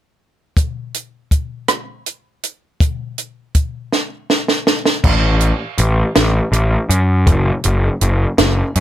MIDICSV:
0, 0, Header, 1, 3, 480
1, 0, Start_track
1, 0, Tempo, 744417
1, 367, Time_signature, 6, 3, 24, 8
1, 5675, End_track
2, 0, Start_track
2, 0, Title_t, "Picked electric bass"
2, 0, Program_c, 0, 34
2, 3253, Note_on_c, 0, 33, 89
2, 3550, Note_off_c, 0, 33, 0
2, 3730, Note_on_c, 0, 33, 87
2, 3878, Note_off_c, 0, 33, 0
2, 3972, Note_on_c, 0, 33, 77
2, 4120, Note_off_c, 0, 33, 0
2, 4202, Note_on_c, 0, 33, 81
2, 4353, Note_off_c, 0, 33, 0
2, 4446, Note_on_c, 0, 42, 88
2, 4685, Note_on_c, 0, 30, 98
2, 4695, Note_off_c, 0, 42, 0
2, 4835, Note_off_c, 0, 30, 0
2, 4933, Note_on_c, 0, 30, 79
2, 5080, Note_off_c, 0, 30, 0
2, 5168, Note_on_c, 0, 30, 76
2, 5317, Note_off_c, 0, 30, 0
2, 5406, Note_on_c, 0, 30, 83
2, 5555, Note_off_c, 0, 30, 0
2, 5646, Note_on_c, 0, 42, 77
2, 5675, Note_off_c, 0, 42, 0
2, 5675, End_track
3, 0, Start_track
3, 0, Title_t, "Drums"
3, 365, Note_on_c, 9, 36, 100
3, 367, Note_on_c, 9, 42, 76
3, 430, Note_off_c, 9, 36, 0
3, 431, Note_off_c, 9, 42, 0
3, 608, Note_on_c, 9, 42, 53
3, 673, Note_off_c, 9, 42, 0
3, 846, Note_on_c, 9, 36, 63
3, 848, Note_on_c, 9, 42, 51
3, 911, Note_off_c, 9, 36, 0
3, 913, Note_off_c, 9, 42, 0
3, 1084, Note_on_c, 9, 42, 66
3, 1086, Note_on_c, 9, 37, 80
3, 1149, Note_off_c, 9, 42, 0
3, 1150, Note_off_c, 9, 37, 0
3, 1329, Note_on_c, 9, 42, 52
3, 1393, Note_off_c, 9, 42, 0
3, 1570, Note_on_c, 9, 42, 58
3, 1634, Note_off_c, 9, 42, 0
3, 1808, Note_on_c, 9, 36, 111
3, 1810, Note_on_c, 9, 42, 76
3, 1873, Note_off_c, 9, 36, 0
3, 1875, Note_off_c, 9, 42, 0
3, 2049, Note_on_c, 9, 42, 55
3, 2114, Note_off_c, 9, 42, 0
3, 2287, Note_on_c, 9, 42, 54
3, 2288, Note_on_c, 9, 36, 67
3, 2351, Note_off_c, 9, 42, 0
3, 2353, Note_off_c, 9, 36, 0
3, 2531, Note_on_c, 9, 38, 45
3, 2595, Note_off_c, 9, 38, 0
3, 2772, Note_on_c, 9, 38, 58
3, 2836, Note_off_c, 9, 38, 0
3, 2892, Note_on_c, 9, 38, 52
3, 2956, Note_off_c, 9, 38, 0
3, 3011, Note_on_c, 9, 38, 77
3, 3075, Note_off_c, 9, 38, 0
3, 3131, Note_on_c, 9, 38, 63
3, 3195, Note_off_c, 9, 38, 0
3, 3249, Note_on_c, 9, 36, 117
3, 3249, Note_on_c, 9, 49, 88
3, 3313, Note_off_c, 9, 36, 0
3, 3313, Note_off_c, 9, 49, 0
3, 3485, Note_on_c, 9, 42, 51
3, 3549, Note_off_c, 9, 42, 0
3, 3726, Note_on_c, 9, 42, 56
3, 3791, Note_off_c, 9, 42, 0
3, 3968, Note_on_c, 9, 42, 67
3, 3969, Note_on_c, 9, 38, 101
3, 4032, Note_off_c, 9, 42, 0
3, 4034, Note_off_c, 9, 38, 0
3, 4212, Note_on_c, 9, 42, 57
3, 4277, Note_off_c, 9, 42, 0
3, 4451, Note_on_c, 9, 42, 68
3, 4516, Note_off_c, 9, 42, 0
3, 4687, Note_on_c, 9, 36, 106
3, 4687, Note_on_c, 9, 42, 84
3, 4752, Note_off_c, 9, 36, 0
3, 4752, Note_off_c, 9, 42, 0
3, 4924, Note_on_c, 9, 42, 61
3, 4988, Note_off_c, 9, 42, 0
3, 5166, Note_on_c, 9, 42, 59
3, 5230, Note_off_c, 9, 42, 0
3, 5404, Note_on_c, 9, 42, 75
3, 5405, Note_on_c, 9, 38, 98
3, 5468, Note_off_c, 9, 42, 0
3, 5469, Note_off_c, 9, 38, 0
3, 5645, Note_on_c, 9, 42, 54
3, 5675, Note_off_c, 9, 42, 0
3, 5675, End_track
0, 0, End_of_file